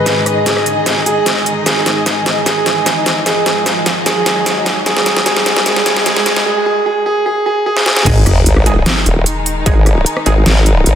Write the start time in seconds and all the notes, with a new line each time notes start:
Already playing: G#2 D#3 D#4 G#4 B4 D#5 G#5, riser
0.06 snare, closed hi-hat
0.26 cross-stick, closed hi-hat
0.46 G#4, snare, closed hi-hat
0.57 cross-stick
0.66 closed hi-hat
0.86 snare, closed hi-hat
1.06 G#4, closed hi-hat
1.26 snare, closed hi-hat
1.46 closed hi-hat
1.66 G#4, snare, closed hi-hat
1.86 snare, closed hi-hat
2.06 snare, closed hi-hat
2.26 snare, closed hi-hat
2.46 G#4, snare, closed hi-hat
2.66 snare, closed hi-hat
2.86 snare, closed hi-hat
3.06 snare, closed hi-hat
3.26 G#4, snare, closed hi-hat
3.46 snare, closed hi-hat
3.66 snare, closed hi-hat
3.86 snare, closed hi-hat
4.06 G#4, snare, closed hi-hat
4.26 snare, closed hi-hat
4.46 snare, closed hi-hat
4.66 snare, closed hi-hat
4.86 G#4, snare, closed hi-hat
4.97 snare
5.06 snare, closed hi-hat
5.17 snare
5.26 G#4, snare, closed hi-hat
5.37 snare
5.46 snare, closed hi-hat
5.57 snare
5.66 G#4, snare, closed hi-hat
5.76 snare
5.86 snare, closed hi-hat
5.96 snare
6.06 G#4, snare, closed hi-hat
6.17 snare
6.26 snare, closed hi-hat
6.36 snare
6.46 G#4
6.66 G#4
6.86 G#4
7.06 G#4
7.26 G#4
7.46 G#4
7.66 G#4
7.77 snare
7.86 G#4, snare
7.97 snare
8.06 G#1 D#3 G#3 D#4 G#4, kick, closed hi-hat, crash, sub drop
8.26 F#1, cross-stick, closed hi-hat
8.46 G#1, closed hi-hat
8.57 cross-stick
8.66 G#3 D#4 G#4, closed hi-hat
8.86 snare, closed hi-hat
9.06 D#1, closed hi-hat
9.26 closed hi-hat
9.46 open hi-hat
9.66 G#1 G#3 D#4 G#4, kick, closed hi-hat
9.86 cross-stick, closed hi-hat
10.06 closed hi-hat
10.17 cross-stick
10.26 G#1 G#3 D#4 G#4, closed hi-hat
10.46 G#1, snare, closed hi-hat
10.66 closed hi-hat
10.86 G#1, closed hi-hat